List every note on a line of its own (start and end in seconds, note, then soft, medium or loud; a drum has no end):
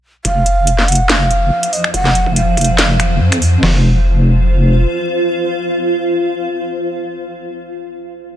0.25 1.50 F1 medium
0.25 3.60 F3 medium
0.25 3.60 C5 medium
0.25 0.90 F5 loud
0.25 kick loud
0.25 closed hi-hat medium
0.46 closed hi-hat medium
0.67 closed hi-hat medium
0.79 snare soft
0.88 1.11 F#5 loud
0.88 closed hi-hat medium
0.92 closed hi-hat medium
0.95 closed hi-hat medium
1.09 1.74 F5 loud
1.09 snare loud
1.09 closed hi-hat medium
1.31 closed hi-hat medium
1.63 closed hi-hat medium
1.73 1.93 D#5 medium
1.73 open hi-hat loud
1.84 finger snap medium
1.94 3.19 F1 loud
1.94 2.33 F#5 loud
1.94 kick loud
1.94 closed hi-hat medium
2.05 snare soft
2.15 closed hi-hat medium
2.26 kick medium
2.36 3.17 F5 medium
2.36 closed hi-hat medium
2.57 kick loud
2.57 closed hi-hat medium
2.61 closed hi-hat medium
2.64 closed hi-hat medium
2.78 snare loud
2.78 closed hi-hat medium
3.00 finger snap medium
3.00 closed hi-hat medium
3.21 3.61 F2 loud
3.32 finger snap medium
3.32 closed hi-hat medium
3.42 open hi-hat medium
3.63 4.86 F1 medium
3.63 7.19 F4 medium
3.63 7.19 C5 medium
3.63 7.19 F5 medium
3.63 snare loud
3.63 open hi-hat medium